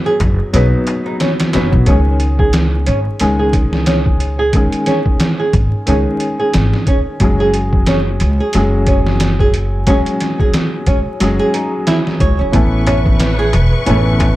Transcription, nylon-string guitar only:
0.06 G#4
0.53 C#4
1.06 D#4
1.20 C#4
1.54 C#4
1.87 C#4
2.39 G#4
2.86 C#4
3.39 G#4
3.86 C#4
4.39 G#4
4.87 C#4
5.39 G#4
5.88 C#4
6.39 G#4
6.87 C#4
7.40 G#4
7.88 C#4
8.40 G#4
8.87 C#4
9.40 G#4
9.88 C#4
10.40 G#4
10.87 C#4
11.39 G#4
11.54 D#4
11.87 E4
12.20 C#5
12.39 C#4
12.87 C#4
13.39 G#4
13.86 C#4

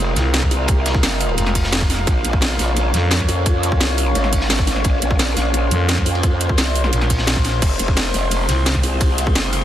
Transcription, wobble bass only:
Already playing: F1
0.51 C2
1.03 F#1
2.07 A#1
2.25 A#1
2.59 A#1
3.29 F2
3.81 C2
4.15 G#1
4.85 A#1
5.02 A#1
5.37 A#1
6.06 F2
6.58 C2
7.62 F1
7.79 F1
8.14 F1
8.83 C2
9.35 F#1

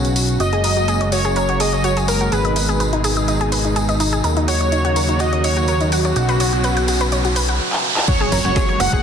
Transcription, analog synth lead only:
0.40 D#5
1.12 C#5
1.37 C#5
1.60 D#5
1.84 C#5
2.08 A#4
2.32 B4
4.48 C#5
5.20 D#5
5.44 C#5
5.68 C#5
5.92 F#4
8.08 C#5
8.32 C#5
8.80 F#5

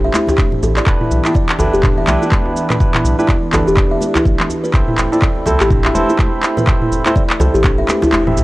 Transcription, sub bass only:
0.38 E1
0.62 A1
0.87 E1
1.11 B1
1.59 G1
1.74 E1
2.08 B1
3.04 B1
3.53 G1
3.67 E1
4.25 A1
4.74 A1
4.98 E1
5.46 C2
5.61 A1
5.95 E1
6.91 E1
7.40 C2
7.54 A1
8.13 E1
8.36 C2

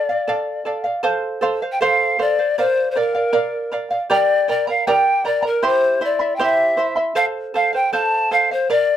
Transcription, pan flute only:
Already playing: D5
1.72 G5
1.81 F5
2.22 D5
2.59 C5
2.91 C5
3.00 A#4
4.14 D5
4.51 D5
4.70 F5
4.87 G5
5.26 D5
5.47 A#4
5.66 C5
6.05 D5
6.36 G5
6.42 E5
7.16 F5
7.56 F5
7.75 G5
7.94 A5
8.33 F5
8.53 C5
8.71 D5

